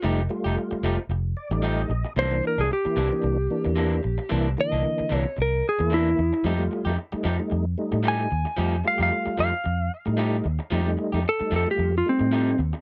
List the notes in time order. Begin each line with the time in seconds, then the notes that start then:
0.02 F1 F3 G3 A3 D#4 G4
0.29 G3 A3 F4, muted clean electric guitar stroke
0.44 F1 A3 D#4 G4
0.57 muted clean electric guitar stroke
0.71 muted clean electric guitar stroke, muted fingered electric bass stroke
0.83 F1 F3 A3 D#4 G4
0.98 muted clean electric guitar stroke
1.09 F1, muted clean electric guitar stroke
1.37 D5
1.51 A1 G3 A3 D#4, muted clean electric guitar stroke
1.62 F3 A3 D#4 G4 D#5
1.89 A#1, muted clean electric guitar stroke
2.05 muted clean electric guitar stroke
2.16 C2 C3 E3 A#3 D4 C5
2.31 E3 A#3 D4
2.44 A#4, muted clean electric guitar stroke
2.58 C2 E3 A#3 D4 G#4
2.70 G4, muted clean electric guitar stroke
2.85 E3 A#3 E4, muted clean electric guitar stroke, muted fingered electric bass stroke
2.96 C2 C3 E3 A#3 D4
3.11 E3 A#3 D4, muted clean electric guitar stroke
3.22 C2, muted clean electric guitar stroke
3.50 E3 A#3 D4
3.65 E2, muted clean electric guitar stroke
3.76 C3 E3 A#3 D4
4.03 A#1, muted clean electric guitar stroke
4.18 muted clean electric guitar stroke
4.29 C2 C3 E3 A#3 D4 E4
4.57 D3 E3 A#3 D#5, muted clean electric guitar stroke
4.72 C2 E3 A#3 D4
4.84 muted clean electric guitar stroke
4.98 muted clean electric guitar stroke, muted fingered electric bass stroke
5.09 C2 C3 E3 A#3 D4
5.19 C#5
5.25 muted clean electric guitar stroke
5.37 C2, muted clean electric guitar stroke
5.42 A#4
5.69 G#4
5.79 E2 E3 A#3 E4, muted clean electric guitar stroke
5.90 C3 E3 A#3 D4 E4
6.18 E2, muted clean electric guitar stroke
6.33 muted clean electric guitar stroke
6.44 F2 F3 G3 A3 D#4 G4
6.58 G3 A3 F4
6.71 muted clean electric guitar stroke
6.85 F2 A3 D#4 G4
6.97 muted clean electric guitar stroke
7.12 G3 A3 D#4, muted clean electric guitar stroke, muted fingered electric bass stroke
7.24 F2 F3 A3 D#4 G4
7.38 G3 A3 D#4, muted clean electric guitar stroke
7.50 F2, muted clean electric guitar stroke
7.78 G3 A3 D#4
7.92 A2, muted clean electric guitar stroke
8.03 F3 A3 D#4 G4
8.08 G#5
8.31 D#2, muted clean electric guitar stroke
8.45 muted clean electric guitar stroke
8.57 F2 F3 G3 A3 D#4 F4 G4
8.84 G3 A3 F4 F5, muted clean electric guitar stroke
8.98 F2 A3 D#4 G4
9.03 F5
9.11 muted clean electric guitar stroke
9.26 muted clean electric guitar stroke, muted fingered electric bass stroke
9.38 F2 F3 A3 D#4 G4 F5
9.52 muted clean electric guitar stroke
9.64 F2, muted clean electric guitar stroke
10.06 A2 G3 A3 D#4, muted clean electric guitar stroke
10.17 F3 A3 D#4 G4
10.44 D#2, muted clean electric guitar stroke
10.59 muted clean electric guitar stroke
10.70 F2 F3 G3 A3 D#4 G4
10.86 G3 A3 D#4
10.97 muted clean electric guitar stroke
11.12 F2 A3 D#4 G4
11.24 muted clean electric guitar stroke
11.29 A4
11.40 G3 A3 D#4, muted clean electric guitar stroke, muted fingered electric bass stroke
11.51 F2 F3 A3 D#4 G4
11.56 A4
11.66 G3 A3 F4, muted clean electric guitar stroke
11.71 G4
11.78 F2, muted clean electric guitar stroke
11.98 F4
12.06 G3 A3 C4 D#4
12.20 A2, muted clean electric guitar stroke
12.32 F3 A3 D#4 G4
12.58 D#2, muted clean electric guitar stroke
12.73 muted clean electric guitar stroke